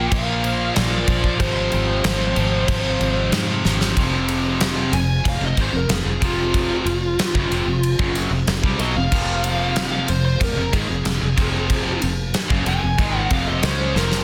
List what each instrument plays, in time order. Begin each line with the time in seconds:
Already playing: distorted electric guitar A#2 F3 A#3, overdriven electric guitar A#2 F3 A#3, tonewheel organ A#3 F4 C5, lead electric guitar G5
0.11 fingered electric bass A#1, distorted electric guitar A#2 F3 A#3, lead electric guitar F5, kick, crash
0.43 distorted electric guitar A#2 F3 A#3, crash
0.74 fingered electric bass A#1, distorted electric guitar A#2 F3 A#3, lead electric guitar D5, snare, crash
1.08 fingered electric bass A#1, distorted electric guitar A#2 F3 A#3, kick, crash
1.24 kick
1.39 fingered electric bass G#1, distorted electric guitar F2 C3 F3, tonewheel organ F3 C4 G4, lead electric guitar C5, kick, crash
1.71 fingered electric bass G#1, distorted electric guitar F2 C3 F3, crash
2.03 fingered electric bass G#1, distorted electric guitar F2 C3 F3, snare, crash
2.36 fingered electric bass G#1, distorted electric guitar F2 C3 F3, crash
2.68 fingered electric bass G#1, distorted electric guitar F2 C3 F3, kick, crash
3.00 fingered electric bass G#1, distorted electric guitar F2 C3 F3, crash
3.31 distorted electric guitar F2 C3 F3, fingered electric bass G#2, snare, crash
3.65 fingered electric bass G#1, distorted electric guitar F2 C3 F3, snare
3.81 snare
3.96 fingered electric bass F1, distorted electric guitar F2 C3 F3, tonewheel organ C4 F4 G#4, kick, ride
4.29 ride
4.61 snare, ride
4.93 fingered electric bass F1, distorted electric guitar F2 C3, lead electric guitar G#5, ride
5.25 fingered electric bass F1, distorted electric guitar F2 C3, lead electric guitar F5, kick, ride
5.41 fingered electric bass F1, distorted electric guitar F2 C3
5.45 lead electric guitar D#5
5.57 fingered electric bass G#1, distorted electric guitar G#2 D#3, lead electric guitar C5, kick, ride
5.73 fingered electric bass F1, distorted electric guitar F2 C3, lead electric guitar A#4
5.88 fingered electric bass F1, distorted electric guitar F2 C3, snare, ride
5.94 lead electric guitar G#4
6.04 fingered electric bass F1, distorted electric guitar F2 C3
6.19 fingered electric bass F1, distorted electric guitar F2 C3 F3, kick, ride
6.24 lead electric guitar F4
6.54 kick, ride
6.85 fingered electric bass F1, distorted electric guitar F2 C3, ride
7.19 snare, ride
7.34 fingered electric bass F#1, distorted electric guitar F#2 C#3, kick
7.50 fingered electric bass F1, distorted electric guitar F2 C3, ride
7.65 fingered electric bass F1, distorted electric guitar F2 C3
7.83 ride
7.99 fingered electric bass F#1, distorted electric guitar F#2 C#3 F#3, kick
8.15 ride
8.30 fingered electric bass F1, distorted electric guitar F2 C3
8.47 fingered electric bass F1, distorted electric guitar F2 C3, snare, ride
8.63 fingered electric bass C2, distorted electric guitar C3 G3, kick
8.79 fingered electric bass B1, distorted electric guitar B2 F#3, lead electric guitar D#5, ride
8.96 fingered electric bass F1, distorted electric guitar F2 C3, lead electric guitar F5
9.11 fingered electric bass F1, distorted electric guitar F2 C3 F3, tonewheel organ A#3, kick, crash
9.44 ride
9.76 snare, ride
9.91 lead electric guitar F5
10.08 fingered electric bass F1, distorted electric guitar F2 C3, lead electric guitar C5, ride
10.25 lead electric guitar C5
10.40 fingered electric bass F1, distorted electric guitar F2 C3, lead electric guitar A#4, kick, ride
10.56 fingered electric bass F1, distorted electric guitar F2 C3
10.72 fingered electric bass G#1, distorted electric guitar G#2 D#3, lead electric guitar G#4, kick, ride
10.88 fingered electric bass F1, distorted electric guitar F2 C3
11.04 fingered electric bass F1, distorted electric guitar F2 C3, snare, ride
11.20 fingered electric bass F1, distorted electric guitar F2 C3
11.36 fingered electric bass F1, distorted electric guitar F2 C3 F3, kick, ride
11.70 kick, ride
12.02 fingered electric bass F1, distorted electric guitar F2 C3, ride
12.34 snare, ride
12.50 fingered electric bass F#1, distorted electric guitar F#2 C#3, kick
12.66 fingered electric bass F1, distorted electric guitar F2 C3, lead electric guitar G#5, ride
12.81 fingered electric bass F1, distorted electric guitar F2 C3
12.98 fingered electric bass G#1, distorted electric guitar G#2 D#3 G#3, kick, ride
13.18 lead electric guitar F#5
13.30 fingered electric bass F1, distorted electric guitar F2 C3 F3, lead electric guitar F5, kick, ride
13.48 lead electric guitar D#5
13.62 fingered electric bass C#2, distorted electric guitar C#3 G#3 C#4, lead electric guitar C5, snare, ride
13.95 fingered electric bass F1, distorted electric guitar F2 C3 F3, lead electric guitar A#4, snare
14.12 snare